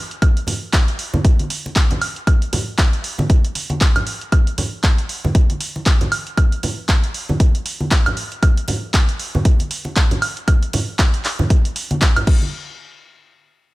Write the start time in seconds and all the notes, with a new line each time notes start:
0.11 closed hi-hat
0.22 kick, closed hi-hat, high woodblock
0.37 closed hi-hat
0.47 open hi-hat, muted conga, low conga
0.73 kick, clap, closed hi-hat
0.88 closed hi-hat
0.99 open hi-hat
1.14 high conga, low conga
1.25 kick, closed hi-hat
1.39 closed hi-hat, high conga
1.50 open hi-hat
1.66 muted conga
1.76 kick, clap, closed hi-hat
1.91 closed hi-hat, high conga, low conga
2.01 open hi-hat, high woodblock
2.16 closed hi-hat
2.27 kick, closed hi-hat, high woodblock
2.42 closed hi-hat
2.53 open hi-hat, muted conga, low conga
2.78 kick, clap, closed hi-hat
2.93 closed hi-hat
3.04 open hi-hat
3.18 high conga, low conga
3.30 kick, closed hi-hat
3.44 closed hi-hat
3.55 open hi-hat, muted conga
3.70 closed hi-hat, high conga
3.81 kick, clap, closed hi-hat
3.96 closed hi-hat, low conga, high woodblock
4.07 open hi-hat
4.21 closed hi-hat
4.32 kick, closed hi-hat, high woodblock
4.47 closed hi-hat
4.58 open hi-hat, muted conga, low conga
4.84 kick, clap, closed hi-hat
4.98 closed hi-hat
5.09 open hi-hat
5.24 high conga, low conga
5.35 kick, closed hi-hat
5.50 closed hi-hat, high conga
5.60 open hi-hat
5.76 muted conga
5.86 kick, clap, closed hi-hat
6.01 closed hi-hat, high conga, low conga
6.12 open hi-hat, high woodblock
6.27 closed hi-hat
6.37 kick, closed hi-hat, high woodblock
6.52 closed hi-hat
6.63 open hi-hat, muted conga, low conga
6.89 kick, clap, closed hi-hat
7.04 closed hi-hat
7.14 open hi-hat
7.29 high conga, low conga
7.40 kick, closed hi-hat
7.55 closed hi-hat
7.66 open hi-hat
7.80 high conga
7.91 kick, clap, closed hi-hat
8.06 closed hi-hat, low conga, high woodblock
8.17 open hi-hat
8.32 closed hi-hat
8.43 kick, closed hi-hat, high woodblock
8.57 closed hi-hat
8.68 open hi-hat, muted conga, low conga
8.94 kick, clap, closed hi-hat
9.09 closed hi-hat
9.19 open hi-hat
9.35 high conga, low conga
9.45 kick, closed hi-hat
9.59 closed hi-hat, high conga
9.71 open hi-hat
9.85 muted conga
9.96 kick, clap, closed hi-hat
10.11 closed hi-hat, high conga, low conga
10.22 open hi-hat, high woodblock
10.37 closed hi-hat
10.48 kick, closed hi-hat, high woodblock
10.63 closed hi-hat
10.73 open hi-hat, muted conga, low conga
10.99 kick, clap, closed hi-hat
11.14 closed hi-hat
11.25 clap, open hi-hat
11.39 high conga, low conga
11.50 kick, closed hi-hat
11.65 closed hi-hat
11.76 open hi-hat
11.91 closed hi-hat, high conga
12.02 kick, clap, closed hi-hat
12.16 closed hi-hat, low conga, high woodblock
12.27 kick, crash
12.42 high conga